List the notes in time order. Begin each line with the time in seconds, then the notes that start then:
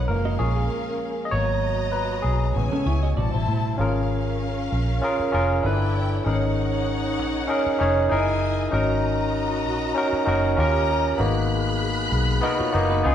Already playing: F#3 B3 A#4 B4 C#5
0.08 F#1 F3 G#3 A#3 C#4 A#4 F5
0.25 F#4 D#5
0.39 A#1 F4 G#4 C#5
0.56 G#4
1.25 D#5
1.31 G#1 F#3 A#3 B3 F#4 C#5 D#5 A#5
1.92 B4
2.22 B1 G#4
2.55 A1 C#3 G#3 B3 E4 C#5 G#5
2.72 C#4 A4, muted fingered electric bass stroke
2.86 C#2 E4 C#5
3.03 F#4 D#5
3.16 A1 B2 C3 G3 E4 F#4 C5 D5 A5
3.34 A1 E4 C5
3.48 A2
3.78 G#1 C#4 F4 G#4 A#4 F5
4.72 A#1
5.01 C#4 F4 G#4 A#4
5.19 muted fingered electric bass stroke
5.32 F1 C#4 F4 G#4 A#4
5.63 G1 D4 E4 A4 B4 D5 G5
6.24 G#1 C#4 D#4 G#4 A#4 C#5 F#5
7.19 A#1
7.47 C#4 D#4 G#4 A#4
7.66 muted fingered electric bass stroke
7.78 F1 C#4 D#4 G#4 C#5
8.09 F#1 D#4 E4 G#4 A#4 D#5 G#5
8.71 G#1 C#4 D#4 F#4 A#4 D#5 A#5
9.65 A#1
9.95 C#4 D#4 F#4 A#4
10.13 muted fingered electric bass stroke
10.26 F#1 C#4 D#4 F#4 A#4
10.57 D#2 C#4 F4 G4 A#4 D#5 A#5
11.18 G#1 A#3 B3 D#4 F#4 G#4 B5 F#6
12.12 B1
12.42 B3 D#4 F#4 A#4 D#5
12.59 F4 C#5, muted fingered electric bass stroke
12.73 F#1 A#3 B3 D#4 F#4
12.90 D#4 B4
13.03 C#2 B3 C#4 D#4 F4 G#4 A#4 D#5 G#5